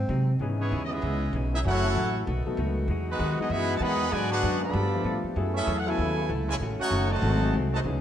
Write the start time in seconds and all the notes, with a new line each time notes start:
Already playing: C4
0.09 G#2 C3 F#3 C4 D#4
0.39 G#2 C#3 E3 G#3 B3 C#4 D#4 G#4
0.58 E3 G#3 B3 C#4 E4 G#4 C#5
0.70 D#2 C#3 E3 B3 D#4
0.84 D#5
0.89 G#3 B3 E4 G#4 D#5 E5
1.02 C#2 C#3 E3 B3 D#4
1.33 B1 C#3 E3 B3 D#4
1.51 G#3 B3 D#4 E4 G#4 E5
1.64 F#1 F#2 E3 F#3 A3 C#4 E4 F#4 C#5 F#5
1.68 C#4 A4
1.83 F#3 A3 C#4 E4 A4
1.95 A1 F#2 E3 A3 C#4
2.25 B1 B2 D#3 A3 B3 D#4 F#4
2.46 F#3 A3 B3 D#4 A4, muted upright bass stroke
2.57 C#2 B2 A3 D#4 F#4
2.88 E2 E3 F#3 G#3 D#4 F#4
3.08 D#3 G#3 B3 D#4 F#4 B4
3.19 D#2 E3 G#3 D#4 F#4
3.38 E3 G#3 B3 D#4 F#4 G#4 D#5, muted upright bass stroke
3.50 F#2 E3 G#3 B3 D#4 E4 F#4 G#4 E5
3.76 D#3 A5
3.80 E2 E3 G#3 B3 D#4 F#4 G#4 D#5 F#5 B5
4.10 G#2 B2 D3 F#3 G#3 B3 F#4 B4 D5 G#5
4.15 D4
4.30 B3 D4 F#4 G#4 B4 F#5
4.43 F#2 G#2 F#3 G#3 B3 D4 G#4
4.60 D3 F3 B3 A4 D5 F5 B5
4.73 G2 F3 G3 A3 B3 F4 G4
4.77 A4
4.94 F3 A3 B3 D4 F4
5.04 A2 G3 B3 F4 A4
5.24 muted upright bass stroke
5.35 F#2 F#3 A3 B3 E4 G#4 A4
5.54 A3 C#4 E4 G#4 A4 E5
5.67 E2 F#3 B3 E4 A4
5.79 F#5
5.85 C#3 F#3 A3 B3 E4 A4
5.89 C#5 G#5
5.98 D#2 F#3 B3 E4 A4
6.29 C#2 F#3 B3 E4 A4
6.47 C#3 E3 G#3 E4 A4 C#5 G#5
6.60 A1 D#3 A3 C#4 F#4
6.79 A3 C#4 D#4 F#4 A4 C#5 F#5, muted upright bass stroke
6.91 F#1 D#3 A3 C#4 F#4
7.10 D#3 F#3 A3 F#4 C5 D#5 A5
7.21 G#1 G#2 C3 F#3 A3 C4 G#4
7.41 F#3 A3 C4 D#4 G#4
7.53 C2 G#2 F#3 A3 C4
7.73 D#3 F#3 A3 F#4 C5 D#5 A5
7.83 C#2 C#3 E3 B3 C#4 D#4 G#4
7.88 D#4